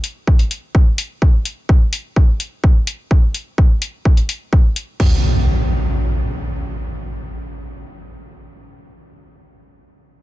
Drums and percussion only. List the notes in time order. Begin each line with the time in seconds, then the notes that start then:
0.04 open hi-hat
0.27 kick
0.39 open hi-hat
0.51 open hi-hat
0.75 kick
0.98 open hi-hat
1.22 kick
1.45 open hi-hat
1.69 kick
1.93 open hi-hat
2.16 kick
2.40 open hi-hat
2.64 kick
2.87 open hi-hat
3.11 kick
3.34 open hi-hat
3.58 kick
3.82 open hi-hat
4.05 kick
4.17 open hi-hat
4.29 open hi-hat
4.53 kick
4.76 open hi-hat
5.00 kick, crash